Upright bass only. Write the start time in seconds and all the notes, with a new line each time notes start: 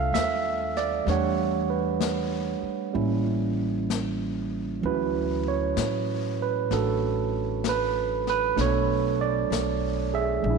0.13 D#2
1.07 E2
2.62 muted upright bass stroke
2.95 A1
4.83 D2
5.77 A2
6.71 A1
8.57 B1
9.50 B1
10.44 A#1